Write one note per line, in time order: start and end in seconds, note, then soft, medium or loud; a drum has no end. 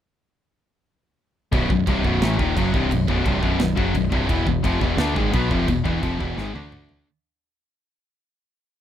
1.52 1.68 B0 medium
1.52 1.69 B1 loud
1.52 1.69 F#2 loud
1.52 1.70 B2 loud
1.52 kick loud
1.52 crash medium
1.70 1.86 B0 medium
1.70 1.84 B1 medium
1.70 1.84 F#2 medium
1.70 kick loud
1.87 2.03 C1 loud
1.87 2.04 C2 medium
1.87 2.04 G2 loud
1.87 2.05 C3 loud
1.87 kick loud
1.87 crash medium
2.04 2.21 B0 loud
2.04 2.21 B1 loud
2.04 2.21 F#2 loud
2.04 2.21 B2 loud
2.04 kick loud
2.22 2.38 A1 loud
2.22 2.37 A2 loud
2.22 2.38 E3 medium
2.22 2.38 A3 medium
2.22 snare loud
2.22 crash medium
2.37 2.55 D#1 loud
2.37 2.55 D#2 medium
2.37 2.55 A#2 medium
2.37 2.56 D#3 medium
2.37 kick loud
2.56 2.72 F#1 medium
2.56 2.73 F#2 loud
2.56 2.73 C#3 loud
2.56 2.73 F#3 loud
2.56 kick loud
2.56 crash medium
2.74 2.90 C1 medium
2.74 2.90 C2 loud
2.74 2.91 G2 medium
2.74 2.91 C3 loud
2.74 kick loud
2.91 3.07 B0 medium
2.91 3.05 B1 medium
2.91 3.05 F#2 medium
2.91 kick medium
2.91 crash medium
3.08 3.24 B0 medium
3.08 3.24 B1 medium
3.08 3.25 F#2 medium
3.08 3.26 B2 loud
3.08 kick loud
3.25 3.42 C1 loud
3.25 3.41 C2 medium
3.25 3.42 G2 loud
3.25 3.42 C3 loud
3.25 kick loud
3.25 crash medium
3.42 3.59 B0 loud
3.42 3.58 B1 medium
3.42 3.59 F#2 loud
3.42 3.60 B2 loud
3.42 kick loud
3.60 3.77 B0 medium
3.60 3.74 B1 medium
3.60 3.74 F#2 medium
3.60 snare loud
3.60 crash medium
3.76 3.94 F#1 medium
3.76 3.93 F#2 medium
3.76 3.94 C#3 medium
3.76 3.94 F#3 loud
3.76 kick loud
3.94 4.11 B0 medium
3.94 4.08 B1 medium
3.94 4.08 F#2 medium
3.94 kick medium
3.94 crash medium
4.12 4.28 C1 loud
4.12 4.28 C2 medium
4.12 4.28 G2 loud
4.12 4.29 C3 loud
4.12 kick loud
4.28 4.45 E1 loud
4.28 4.44 E2 medium
4.28 4.45 B2 loud
4.28 4.46 E3 loud
4.28 kick loud
4.28 crash medium
4.46 4.63 E1 medium
4.46 4.60 E2 medium
4.46 4.60 B2 medium
4.46 kick loud
4.64 4.80 F1 loud
4.64 4.80 F2 medium
4.64 4.80 C3 loud
4.64 4.81 F3 loud
4.64 kick loud
4.64 crash medium
4.80 4.97 E1 loud
4.80 4.98 E2 loud
4.80 4.97 B2 loud
4.80 4.98 E3 loud
4.80 kick loud
4.97 5.14 D2 loud
4.97 5.14 D3 medium
4.97 5.16 A3 medium
4.97 5.16 D4 loud
4.97 snare loud
4.97 crash medium
5.14 5.33 G#1 loud
5.14 5.32 G#2 medium
5.14 5.31 D#3 medium
5.14 5.32 G#3 loud
5.14 kick loud
5.32 5.49 B1 medium
5.32 5.49 B2 loud
5.32 5.50 F#3 loud
5.32 5.50 B3 loud
5.32 kick loud
5.32 crash medium
5.50 5.67 F1 medium
5.50 5.67 F2 medium
5.50 5.68 C3 loud
5.50 5.68 F3 loud
5.50 kick loud
5.68 5.84 E1 medium
5.68 5.82 E2 medium
5.68 5.82 B2 medium
5.68 kick medium
5.68 crash medium
5.84 6.01 E1 medium
5.84 6.01 E2 loud
5.84 6.02 B2 loud
5.84 6.02 E3 loud
5.84 kick loud
6.01 6.19 F1 loud
6.01 6.18 F2 medium
6.01 6.19 C3 loud
6.01 6.20 F3 loud
6.01 kick loud
6.01 crash medium
6.19 6.37 E1 loud
6.19 6.36 E2 medium
6.19 6.37 B2 loud
6.19 6.37 E3 loud
6.19 kick medium
6.37 6.54 G#1 loud
6.37 6.54 G#2 medium
6.37 6.53 D#3 medium
6.37 6.54 G#3 loud
6.37 snare medium
6.53 7.03 D2 medium
6.53 7.05 D3 medium
6.53 7.06 A3 medium
6.53 7.06 D4 medium
6.53 high tom medium
6.72 mid tom medium
6.89 floor tom medium